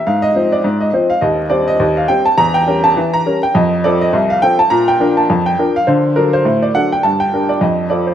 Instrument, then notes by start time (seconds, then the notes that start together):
upright piano
0.07 G#2 F5
0.22 D#5
0.35 F3 C4 C5
0.52 D5
0.64 G#2
0.80 D#5
0.93 F3 C4 C5
1.10 F5
1.21 D#2 D#5
1.50 G3 C4 C5 D5
1.68 D#5
1.80 D#2
1.97 F5
2.08 G3 C4 C5 G5
2.25 A5
2.38 E2 A#5
2.54 G5
2.67 G3 C#4 A#4
2.84 A5
2.97 E3
3.14 A#5
3.26 G3 C#4 A#4
3.43 G5
3.54 F2 D#5
3.84 F3 C4 A4 D5
4.01 D#5
4.13 C2
4.30 F5
4.42 F3 C4 A4 G5
4.59 A5
4.70 A#2 A#5
4.88 G5
5.00 F3 D4 A#4
5.17 A5
5.30 F2
5.46 G5
5.59 F3 D4 A#4
5.76 F5
5.87 D3 C5
6.16 F#3 D4 A4 A#4
6.33 C5
6.45 A2
6.62 D5
6.75 F#3 D4 A4 F#5
6.92 G5
7.03 G2 A5
7.20 G5
7.33 G3 D4 A#4
7.49 D5
7.61 F2 D#5
7.90 C4 F4 A4 D5
8.07 C5